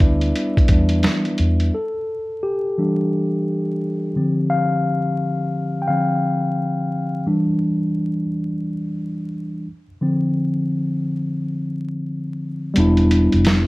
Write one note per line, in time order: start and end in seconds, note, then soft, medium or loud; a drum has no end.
0.00 0.31 D2 medium
0.00 0.31 G3 medium
0.00 0.71 B3 medium
0.00 0.71 D4 medium
0.00 1.35 E4 medium
0.00 1.75 B4 medium
0.00 1.75 D5 loud
0.00 1.33 E5 medium
0.00 kick medium
0.21 closed hi-hat soft
0.36 closed hi-hat medium
0.57 kick medium
0.57 closed hi-hat soft
0.68 1.06 E2 medium
0.68 1.01 G3 soft
0.68 1.01 B3 soft
0.68 1.01 D4 medium
0.68 kick medium
0.68 closed hi-hat medium
0.89 closed hi-hat medium
1.03 1.35 E3 loud
1.03 snare loud
1.03 closed hi-hat medium
1.25 closed hi-hat soft
1.38 1.69 E2 medium
1.38 closed hi-hat medium
1.60 closed hi-hat soft
1.74 2.39 A4 medium
2.43 4.45 G4 medium
2.78 4.11 E3 soft
2.78 4.11 G3 soft
2.78 4.11 D4 medium
4.16 4.64 D3 medium
4.16 4.65 F3 soft
4.16 4.65 C4 medium
4.50 5.86 F5 loud
5.82 5.87 G5 medium
5.88 6.19 D3 soft
5.88 6.19 F3 soft
5.88 6.19 C4 soft
5.88 6.87 F5 medium
7.27 8.25 E3 medium
7.27 8.25 G3 soft
7.27 8.25 D4 medium
10.01 11.00 D3 medium
10.01 11.00 F3 soft
10.01 11.01 C4 medium
12.74 13.26 E1 loud
12.74 13.67 G3 medium
12.74 13.67 B3 medium
12.74 13.67 D4 medium
12.74 closed hi-hat medium
12.80 13.67 E4 medium
12.97 closed hi-hat soft
13.11 closed hi-hat medium
13.32 13.67 F1 medium
13.32 closed hi-hat medium
13.45 snare loud
13.45 closed hi-hat medium